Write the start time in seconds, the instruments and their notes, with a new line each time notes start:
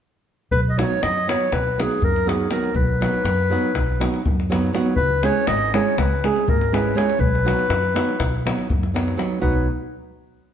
0.51 upright bass B1, clarinet B4, davul low
0.70 clarinet D#5
0.78 nylon-string guitar F#3 B3 D#4 F#4, clarinet C#5, davul high
0.91 davul high
1.03 upright bass F#2, clarinet D#5, davul high
1.27 nylon-string guitar F#3 B3 D#4 F#4, clarinet C#5, davul high
1.52 upright bass B1, clarinet B4, davul high, davul low
1.78 nylon-string guitar F#3 B3 D#4 F#4, clarinet G#4, davul high
1.91 davul high
2.02 upright bass F#2, clarinet A#4, davul low
2.16 davul high
2.26 nylon-string guitar F#3 B3 D#4 F#4, clarinet G#4, davul high
2.50 nylon-string guitar F#3 B3 D#4 F#4, clarinet A#4, davul high
2.64 davul high
2.74 upright bass B1, clarinet B4, davul low
3.01 nylon-string guitar F#3 B3 D#4 F#4, davul high
3.14 davul high
3.24 upright bass F#2, davul high
3.50 nylon-string guitar F#3 B3 D#4 F#4
3.74 upright bass B1, davul high, davul low
4.00 nylon-string guitar F#3 B3 D#4 F#4, davul high
4.14 davul high
4.25 upright bass F#2, davul low
4.40 davul high
4.50 nylon-string guitar F#3 B3 D#4 F#4, davul high
4.73 nylon-string guitar F#3 B3 D#4 F#4, davul high
4.86 davul high
4.96 upright bass C#2, clarinet B4, davul low
5.22 nylon-string guitar G#3 C#4 E4 G#4, clarinet C#5, davul high
5.35 davul high
5.47 upright bass G#1, clarinet D#5, davul high
5.74 nylon-string guitar G#3 C#4 E4 G#4, clarinet C#5, davul high
5.97 upright bass C#2, clarinet B4, davul high, davul low
6.23 nylon-string guitar G#3 C#4 E4 G#4, clarinet G#4, davul high
6.36 davul high
6.48 upright bass G#1, clarinet A#4, davul low
6.61 davul high
6.72 nylon-string guitar G#3 C#4 E4 G#4, clarinet B4, davul high
6.94 nylon-string guitar G#3 C#4 E4 G#4, clarinet C#5, davul high
7.10 davul high
7.19 upright bass B1, clarinet B4, davul low
7.35 davul high
7.45 nylon-string guitar F#3 B3 D#4 F#4, davul high
7.59 davul high
7.69 upright bass F#2, davul high
7.83 davul high
7.94 nylon-string guitar F#3 B3 D#4 F#4, davul high
8.09 davul high
8.20 upright bass B1, davul high, davul low
8.45 nylon-string guitar F#3 B3 D#4 F#4, davul high
8.59 davul high
8.70 upright bass F#2, davul low
8.83 davul high
8.94 nylon-string guitar F#3 B3 D#4 F#4, davul high
9.08 davul high
9.17 nylon-string guitar F#3 B3 D#4 F#4, davul high
9.41 upright bass B1, nylon-string guitar F#3 B3 D#4 F#4, clarinet B4, davul low